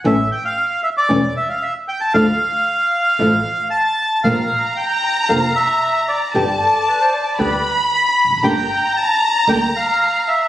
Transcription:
X:1
M:4/4
L:1/16
Q:1/4=115
K:Gdor
V:1 name="Violin section"
z16 | z16 | b16 | a8 =b8 |
b16 |]
V:2 name="Bandoneon"
e2 g f3 e d3 e f e2 g a | f12 a4 | f4 g4 f2 e4 d2- | d8- d2 z2 =b4 |
g4 a4 g2 f4 e2 |]
V:3 name="Clarinet"
z16 | z16 | z16 | z2 A2 =B c d2 B3 z4 z |
z16 |]
V:4 name="Nylon-string guitar"
[E,A,^CE]2 z6 [E,A,CE]2 z6 | [D,F,A,DE]2 z6 [D,F,A,DE]2 z6 | [D,B,CF]2 z6 [D,B,CF]2 z6 | [D,G,=B,G]2 z6 [D,G,B,G]2 z6 |
[D,G,B,DG]2 z6 [D,G,B,DG]2 z6 |]
V:5 name="Upright bass" clef=bass
A,,,3/2 z6 z/2 E,,,3/2 z6 z/2 | D,,3/2 z6 z/2 A,,,3/2 z6 z/2 | B,,,3/2 z6 z/2 F,,,3/2 z6 z/2 | G,,,3/2 z6 z/2 D,,3/2 z4 z E,,,/2 F,,,/2 ^F,,,/2 |
G,,,3/2 z6 z/2 D,,3/2 z6 z/2 |]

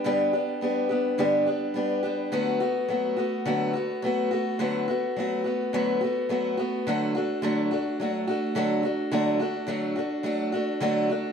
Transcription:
X:1
M:4/4
L:1/8
Q:1/4=106
K:Dmix
V:1 name="Steel-string acoustic guitar"
[G,,D,G,B,DG] [G,B,DG] [G,B,DG] [G,B,DG] [G,,D,G,B,DG] [G,B,DG] [G,B,DG] [G,B,DG] | [D,F,A,B,F] [A,B,F] [F,A,B,F] [A,B,F] [D,F,A,B,F] [A,B,F] [F,A,B,F] [A,B,F] | [D,F,A,B,F] [A,B,F] [F,A,B,F] [A,B,F] [D,F,A,B,F] [A,B,F] [F,A,B,F] [A,B,F] | [D,F,A,DF] [A,DF] [D,F,A,DF] [A,DF] [F,A,DF] [A,DF] [D,F,A,DF] [A,DF] |
[D,F,A,DF] [A,DF] [D,F,A,DF] [A,DF] [F,A,DF] [A,DF] [D,F,A,DF] [A,DF] |]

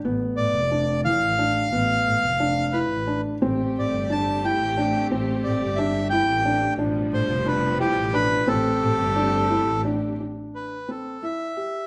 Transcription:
X:1
M:5/8
L:1/16
Q:1/4=89
K:Am
V:1 name="Accordion"
z2 d4 f4- | f6 B3 z | z2 d2 a2 g4 | z2 d2 e2 g4 |
z2 c2 B2 G2 B2 | A8 z2 | z2 B2 A2 e4 |]
V:2 name="Felt piano"
B,4 D2 E,2 D2 | B,4 D2 E2 D2 | C4 D2 E2 D2 | C4 D2 E2 D2 |
D4 D2 E2 D2 | C4 D2 E2 D2 | D4 C2 E2 G2 |]
V:3 name="String section"
z8 z2 | z8 z2 | [A,CG]8- [A,CG]2- | [A,CG]8- [A,CG]2 |
[B,,F,G,]8- [B,,F,G,]2 | [A,CG]8- [A,CG]2 | z8 z2 |]
V:4 name="Double bass" clef=bass
A,,, z A,, F,,,4 A,,,3 | A,,, z A,, F,,,4 A,,,3 | A,,, z A,, G,,,4 A,,,3 | A,,, z A,, G,,,4 A,,,3 |
A,,, z A,, F,,,4 A,,,3 | A,,, z A,, G,,,4 A,,,3 | z8 z2 |]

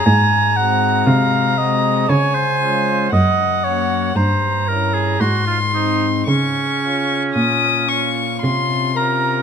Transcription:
X:1
M:3/4
L:1/16
Q:1/4=57
K:Db
V:1 name="Violin"
b8 a4 | g4 b4 c'4 | d'4 e'2 d'2 c'2 b2 |]
V:2 name="Oboe"
a2 g2 f2 e2 d c3 | e2 d2 c2 B A G F E z | D8 z2 B2 |]
V:3 name="Pipe organ"
z2 [A,CG]4 [A,CG]2 z2 [A,DF]2 | z2 [B,DG]2 z2 [D=E]2 z2 [C_E]2 | z2 [DF]4 [DF]4 [DF]2 |]
V:4 name="Pipe organ" clef=bass
A,,4 C,4 D,4 | G,,4 =G,,4 A,,4 | D,4 B,,4 C,4 |]
V:5 name="Cello" clef=bass
A,,4 C,4 D,4 | G,,4 =G,,4 A,,4 | D,4 B,,4 C,4 |]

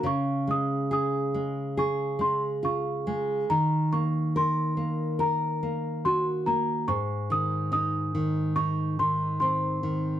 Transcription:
X:1
M:4/4
L:1/8
Q:1/4=71
K:Db
V:1 name="Celesta"
d' e' e'2 d' c' d'2 | b d' c'2 b2 c' b | d' e' e'2 d' c' c'2 |]
V:2 name="Nylon-string guitar"
D, A, A A, A A, F A, | E, B, B B, B B, G B, | A,, E, E E, E E, C E, |]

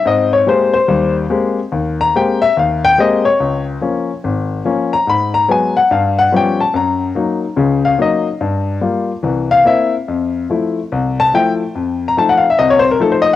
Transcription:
X:1
M:4/4
L:1/16
Q:"Swing" 1/4=144
K:Ab
V:1 name="Grand piano"
e2 d2 c2 c4 z6 | z2 b2 g2 _f2 =f2 g2 e2 d2- | [K:Fphr] d2 z12 b2 | _c'2 b2 a2 g2 f2 g2 =g2 =a2 |
b6 z4 f2 e2 z2 | z8 z2 f2 =e2 z2 | z8 z2 =a2 =g2 z2 | z3 b =a g f _f e d c B =A c e z |]
V:2 name="Grand piano" clef=bass
[A,,C]4 [A,B,CG]2 z2 [E,,G,]4 [A,B,CG]2 z2 | E,,4 [A,B,CG]2 z2 E,,4 [A,B,CG]2 z2 | [K:Fphr] D,,4 [F,B,D]2 z2 A,,,4 [F,B,D]2 z2 | A,,4 [G,A,_C]2 z2 =G,,4 [F,=G,=B,^C]2 z2 |
G,,4 [G,B,E]2 z2 [D,,D,]4 [G,B,E]2 z2 | =G,,4 [=G,B,F]2 z2 [C,,=E,]4 [B,C=E]2 z2 | F,,4 [F,=A,=E]2 z2 C,,4 [F,A,E]2 z2 | F,,4 [F,=A,E]2 z2 [C,,C,]4 [F,A,E]2 z2 |]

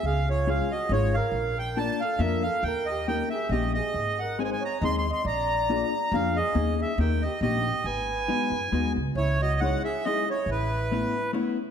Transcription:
X:1
M:3/4
L:1/16
Q:"Swing" 1/4=139
K:D#phr
V:1 name="Accordion"
^e2 c2 e2 d2 c2 e2- | ^e2 =g2 =a2 e2 =e2 ^e2 | =g2 d2 g2 e2 d2 d2- | d2 f2 g/2 g/2 g a2 (3^b2 b2 b2 |
a8 ^e2 d2- | d2 e2 =g2 d2 d4 | g8- g2 z2 | [K:C#m] c2 d2 f2 e2 d2 c2 |
B8 z4 |]
V:2 name="Flugelhorn"
G2 ^E2 G2 F2 E2 A2- | A2 A2 =d2 =A2 ^A2 =A2 | A2 =G2 A2 ^G2 =G2 ^G2- | G2 A2 ^B/2 B/2 B c2 (3d2 d2 d2 |
=d8 G2 G2- | G2 G2 A2 =G2 G4 | B8- B2 z2 | [K:C#m] E2 F2 c2 G2 G2 E2 |
E8 z4 |]
V:3 name="Hollow-body jazz guitar"
z4 [G,C^EG]2 z2 [G,CEG]2 z2 | z4 [A,=D^EA]2 z2 [A,DEA]2 z2 | z4 [A,CD=G]2 z2 [A,CDG]2 z2 | z4 [G,^B,DG]2 z2 [G,B,DG]2 z2 |
z4 [A,=D^EG]2 z2 [A,DEG]2 z2 | [A,CDG]4 [A,CD=G]2 z2 [A,CDG]2 z2 | z4 [G,B,DF]2 z2 [G,B,DF]2 z2 | [K:C#m] z4 [G,CDE]2 z2 [G,CDE]2 z2 |
z4 [A,B,CE]2 z2 [A,B,CE]2 z2 |]
V:4 name="Upright bass" clef=bass
C,,8 G,,,4 | A,,,8 ^E,,4 | D,,8 A,,,4 | G,,,8 D,,4 |
A,,,8 ^E,,4 | D,,4 D,,4 A,,,4 | G,,,6 F,,2 D,,2 C,,2 | [K:C#m] C,,8 z4 |
A,,,8 z4 |]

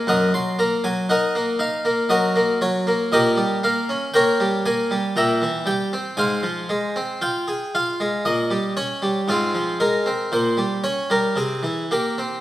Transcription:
X:1
M:3/4
L:1/16
Q:1/4=58
K:Ebdor
V:1 name="Harpsichord"
[Beg] c' b a [Beg]2 f2 [GBe]2 d2 | [K:Fm] [GBe]2 f2 [Bdg]2 a2 [=egb]2 g2 | [cfa]4 g2 f2 e2 d2 | [CFA]2 B2 c2 d B A2 G2 |]
V:2 name="Harpsichord" clef=bass
G,, G, B, G, E B, E B, G, B, G, B, | [K:Fm] B,, G, B, D B, G, B, G, B,, =E, G, C | A,, F, A, C F A F A, B,, G, D G, | A,, F, A, C B,, G, D G, C, =E, B, C |]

